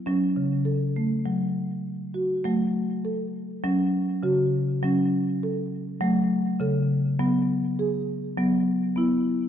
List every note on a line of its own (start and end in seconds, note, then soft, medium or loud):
0.06 0.35 F#3 medium
0.06 0.66 C#4 medium
0.36 1.22 C#3 medium
0.65 0.95 A4 medium
0.96 1.56 A3 medium
1.25 2.41 F#3 medium
2.14 2.44 F#4 medium
2.44 3.60 F#3 medium
2.44 3.04 A3 medium
3.05 3.64 A4 medium
3.64 4.20 F#3 medium
3.64 4.23 C#4 medium
4.23 4.78 C#3 medium
4.23 4.82 F#4 medium
4.83 5.97 F#3 medium
4.83 5.43 C#4 medium
5.43 6.02 A4 medium
6.01 6.56 F#3 medium
6.01 6.60 A3 medium
6.60 7.16 C#3 medium
6.60 7.20 A4 medium
7.19 8.34 F#3 medium
7.19 7.79 B3 medium
7.79 8.38 G#4 medium
8.37 8.93 F#3 medium
8.37 8.95 B3 medium
8.96 9.49 B3 medium
8.96 9.49 E4 medium